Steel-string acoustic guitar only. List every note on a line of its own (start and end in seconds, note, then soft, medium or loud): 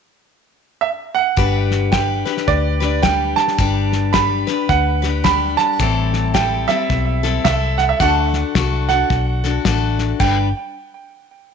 1.37 1.91 G3 medium
1.37 1.92 D4 medium
1.37 1.93 G4 medium
1.37 1.93 B4 medium
1.92 2.26 G3 soft
1.92 2.26 D4 medium
1.92 2.26 G4 medium
1.92 2.24 B4 medium
2.25 2.82 D4 soft
2.25 2.81 G4 soft
2.25 2.79 B4 medium
2.80 3.02 D4 soft
2.80 3.03 G4 soft
2.80 3.03 B4 soft
3.02 3.58 G3 medium
3.02 3.58 D4 medium
3.02 3.59 G4 medium
3.02 3.59 B4 medium
3.58 4.12 G3 medium
3.58 4.13 D4 medium
3.58 4.14 G4 medium
3.58 4.14 B4 medium
4.13 4.47 G3 soft
4.13 4.48 D4 medium
4.13 4.48 G4 medium
4.13 4.46 B4 medium
4.47 5.03 D4 soft
4.47 5.02 G4 soft
4.47 5.01 B4 medium
5.02 5.24 D4 soft
5.02 5.25 G4 medium
5.02 5.24 B4 soft
5.24 5.79 G3 medium
5.24 5.80 D4 medium
5.24 5.80 G4 medium
5.24 5.81 B4 medium
5.79 6.35 A2 medium
5.79 6.35 E3 medium
5.79 6.33 G3 medium
5.79 6.34 C4 medium
5.79 6.35 E4 medium
5.79 6.36 A4 medium
6.34 6.68 G3 medium
6.34 6.69 C4 medium
6.34 6.68 E4 medium
6.34 6.66 A4 medium
6.68 7.25 G3 soft
6.68 7.24 C4 soft
6.68 7.23 E4 soft
6.68 7.22 A4 soft
7.23 7.44 G3 soft
7.23 7.45 C4 soft
7.23 7.46 E4 medium
7.23 7.45 A4 medium
7.45 8.00 G3 medium
7.45 8.01 C4 medium
7.45 8.01 E4 medium
7.45 8.01 A4 medium
8.00 8.55 D3 medium
8.00 8.54 A3 medium
8.00 8.55 D4 medium
8.00 8.56 F#4 medium
8.00 8.56 A4 medium
8.55 8.89 A3 medium
8.55 8.89 D4 medium
8.55 8.89 F#4 medium
8.55 8.87 A4 medium
8.89 9.45 D4 soft
8.89 9.44 F#4 soft
8.89 9.43 A4 soft
9.44 9.65 D4 soft
9.44 9.66 F#4 soft
9.44 9.65 A4 soft
9.65 10.19 A3 medium
9.65 10.20 D4 medium
9.65 10.21 F#4 medium
9.65 10.21 A4 medium
10.20 10.47 G3 medium
10.20 10.47 D4 medium
10.20 10.48 G4 medium
10.20 10.48 B4 medium